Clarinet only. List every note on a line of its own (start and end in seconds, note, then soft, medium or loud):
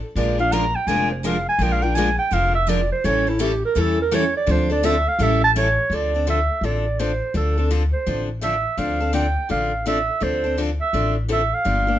0.17 0.38 D5 medium
0.40 0.54 F5 loud
0.53 0.77 A#5 loud
0.75 0.89 G5 medium
0.88 1.10 G#5 loud
1.11 1.27 C5 medium
1.26 1.48 F5 medium
1.49 1.64 G#5 loud
1.63 1.74 G5 medium
1.72 1.84 F5 medium
1.82 1.96 G5 medium
1.95 2.18 G#5 loud
2.19 2.35 G5 medium
2.33 2.54 F5 medium
2.55 2.70 E5 medium
2.69 2.91 D5 medium
2.92 3.07 C5 medium
3.06 3.30 C#5 loud
3.29 3.43 E4 medium
3.41 3.63 G4 medium
3.65 3.82 A#4 loud
3.80 4.01 A4 medium
4.02 4.16 A#4 loud
4.15 4.36 C#5 medium
4.37 4.53 D5 loud
4.51 4.71 C5 medium
4.72 4.87 D5 medium
4.85 5.09 E5 medium
5.08 5.24 F5 loud
5.23 5.43 E5 medium
5.44 5.51 A5 loud
5.57 5.96 C#5 medium
5.94 6.29 D5 medium
6.30 6.66 E5 medium
6.65 7.02 D5 medium
7.00 7.35 C5 medium
7.37 7.69 A4 medium
7.93 8.27 C5 medium
8.43 8.79 E5 medium
8.78 9.14 F5 medium
9.14 9.48 G5 medium
9.51 9.84 F5 medium
9.87 10.24 E5 medium
10.23 10.58 C5 medium
10.81 11.14 E5 medium
11.32 11.55 E5 medium
11.54 11.99 F5 medium